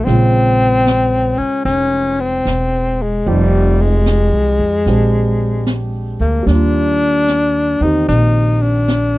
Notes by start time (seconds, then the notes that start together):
0.05 A#1 C#3 G#3 C4 C5, brush sweep, snare
0.09 F4
0.87 snare, hi-hat pedal
1.38 C#4, muted upright bass stroke
1.65 F1 C#4, brush sweep, snare
2.20 C4
2.45 E1, snare, hi-hat pedal
3.02 G#3
3.26 F1 F3 G3 C4 D#4 G4, brush sweep
3.81 G#3
4.06 snare, hi-hat pedal
4.33 C2
4.59 F2
4.86 A#1 G#3 C4 D4 G4, brush sweep, snare
5.66 snare, hi-hat pedal
6.20 D2 A#3
6.42 G3 A#3
6.46 D#2 D4, brush sweep, snare
6.51 F4 D5
7.28 snare, hi-hat pedal
7.81 E2 D#3 C4 D#4 G4
8.08 A#1 D#4, brush sweep, snare
8.61 D4
8.88 snare, hi-hat pedal